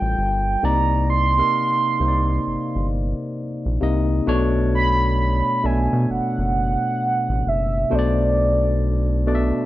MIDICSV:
0, 0, Header, 1, 4, 480
1, 0, Start_track
1, 0, Tempo, 909091
1, 329, Time_signature, 4, 2, 24, 8
1, 5098, End_track
2, 0, Start_track
2, 0, Title_t, "Soft synth lead"
2, 0, Program_c, 0, 80
2, 0, Note_on_c, 0, 79, 99
2, 340, Note_on_c, 0, 82, 111
2, 348, Note_off_c, 0, 79, 0
2, 575, Note_off_c, 0, 82, 0
2, 580, Note_on_c, 0, 84, 112
2, 1514, Note_off_c, 0, 84, 0
2, 2507, Note_on_c, 0, 83, 115
2, 2986, Note_on_c, 0, 80, 91
2, 2994, Note_off_c, 0, 83, 0
2, 3218, Note_off_c, 0, 80, 0
2, 3225, Note_on_c, 0, 78, 106
2, 3951, Note_on_c, 0, 76, 90
2, 3959, Note_off_c, 0, 78, 0
2, 4196, Note_on_c, 0, 74, 84
2, 4204, Note_off_c, 0, 76, 0
2, 4902, Note_off_c, 0, 74, 0
2, 5098, End_track
3, 0, Start_track
3, 0, Title_t, "Tine electric piano"
3, 0, Program_c, 1, 4
3, 0, Control_c, 1, 64, 127
3, 0, Note_on_c, 1, 55, 65
3, 0, Note_on_c, 1, 65, 58
3, 0, Note_on_c, 1, 69, 53
3, 0, Note_on_c, 1, 72, 69
3, 331, Note_on_c, 1, 48, 80
3, 334, Note_on_c, 1, 58, 74
3, 337, Control_c, 1, 64, 0
3, 337, Note_on_c, 1, 63, 77
3, 338, Note_off_c, 1, 65, 0
3, 341, Note_off_c, 1, 69, 0
3, 341, Note_off_c, 1, 72, 0
3, 342, Note_off_c, 1, 55, 0
3, 342, Note_on_c, 1, 74, 98
3, 420, Control_c, 1, 64, 127
3, 618, Note_off_c, 1, 48, 0
3, 620, Note_off_c, 1, 58, 0
3, 622, Note_off_c, 1, 63, 0
3, 624, Note_off_c, 1, 74, 0
3, 726, Note_on_c, 1, 48, 64
3, 731, Note_on_c, 1, 58, 60
3, 735, Note_on_c, 1, 63, 58
3, 736, Note_on_c, 1, 77, 73
3, 992, Note_off_c, 1, 48, 0
3, 994, Note_off_c, 1, 58, 0
3, 996, Note_off_c, 1, 63, 0
3, 997, Note_off_c, 1, 77, 0
3, 1053, Note_on_c, 1, 48, 61
3, 1058, Note_on_c, 1, 58, 54
3, 1060, Note_on_c, 1, 63, 55
3, 1063, Note_on_c, 1, 72, 54
3, 1099, Note_on_c, 1, 74, 63
3, 1100, Note_off_c, 1, 72, 0
3, 1798, Note_off_c, 1, 48, 0
3, 1801, Note_off_c, 1, 58, 0
3, 1801, Note_off_c, 1, 63, 0
3, 1821, Note_off_c, 1, 74, 0
3, 2011, Note_on_c, 1, 48, 83
3, 2016, Note_on_c, 1, 58, 68
3, 2020, Note_on_c, 1, 63, 71
3, 2023, Note_on_c, 1, 75, 86
3, 2211, Note_off_c, 1, 48, 0
3, 2213, Note_off_c, 1, 58, 0
3, 2215, Note_off_c, 1, 63, 0
3, 2216, Note_off_c, 1, 75, 0
3, 2253, Note_on_c, 1, 47, 109
3, 2255, Control_c, 1, 64, 0
3, 2256, Note_on_c, 1, 57, 99
3, 2260, Note_on_c, 1, 62, 98
3, 2264, Note_on_c, 1, 73, 117
3, 2349, Control_c, 1, 64, 127
3, 2828, Note_off_c, 1, 47, 0
3, 2829, Note_off_c, 1, 57, 0
3, 2831, Note_off_c, 1, 62, 0
3, 2834, Note_off_c, 1, 73, 0
3, 2976, Note_on_c, 1, 47, 69
3, 2976, Note_on_c, 1, 57, 59
3, 2980, Note_on_c, 1, 62, 60
3, 2986, Note_on_c, 1, 76, 79
3, 3719, Note_off_c, 1, 47, 0
3, 3720, Note_off_c, 1, 57, 0
3, 3722, Note_off_c, 1, 62, 0
3, 3725, Note_off_c, 1, 76, 0
3, 4171, Note_on_c, 1, 47, 90
3, 4175, Note_on_c, 1, 57, 88
3, 4179, Note_on_c, 1, 62, 81
3, 4182, Note_on_c, 1, 72, 76
3, 4217, Note_on_c, 1, 74, 98
3, 4220, Note_off_c, 1, 72, 0
3, 4747, Note_off_c, 1, 47, 0
3, 4749, Note_off_c, 1, 57, 0
3, 4751, Note_off_c, 1, 62, 0
3, 4770, Note_off_c, 1, 74, 0
3, 4891, Note_on_c, 1, 47, 89
3, 4894, Note_on_c, 1, 57, 74
3, 4897, Note_on_c, 1, 62, 76
3, 4901, Note_on_c, 1, 74, 72
3, 4936, Note_on_c, 1, 76, 90
3, 4939, Note_off_c, 1, 74, 0
3, 5098, Note_off_c, 1, 47, 0
3, 5098, Note_off_c, 1, 57, 0
3, 5098, Note_off_c, 1, 62, 0
3, 5098, Note_off_c, 1, 76, 0
3, 5098, End_track
4, 0, Start_track
4, 0, Title_t, "Analog synth bass"
4, 0, Program_c, 2, 38
4, 8, Note_on_c, 2, 33, 81
4, 81, Note_off_c, 2, 33, 0
4, 94, Note_on_c, 2, 31, 76
4, 301, Note_off_c, 2, 31, 0
4, 334, Note_on_c, 2, 36, 106
4, 751, Note_off_c, 2, 36, 0
4, 1057, Note_on_c, 2, 36, 82
4, 1263, Note_off_c, 2, 36, 0
4, 1303, Note_on_c, 2, 31, 46
4, 1361, Note_off_c, 2, 31, 0
4, 1454, Note_on_c, 2, 31, 83
4, 1659, Note_off_c, 2, 31, 0
4, 1930, Note_on_c, 2, 34, 77
4, 2003, Note_off_c, 2, 34, 0
4, 2017, Note_on_c, 2, 36, 78
4, 2223, Note_off_c, 2, 36, 0
4, 2257, Note_on_c, 2, 35, 105
4, 2865, Note_off_c, 2, 35, 0
4, 2978, Note_on_c, 2, 35, 78
4, 3108, Note_off_c, 2, 35, 0
4, 3130, Note_on_c, 2, 47, 91
4, 3202, Note_off_c, 2, 47, 0
4, 3220, Note_on_c, 2, 30, 49
4, 3278, Note_off_c, 2, 30, 0
4, 3369, Note_on_c, 2, 30, 85
4, 3576, Note_off_c, 2, 30, 0
4, 3850, Note_on_c, 2, 33, 95
4, 3923, Note_off_c, 2, 33, 0
4, 3940, Note_on_c, 2, 30, 76
4, 4145, Note_off_c, 2, 30, 0
4, 4183, Note_on_c, 2, 35, 105
4, 5028, Note_off_c, 2, 35, 0
4, 5098, End_track
0, 0, End_of_file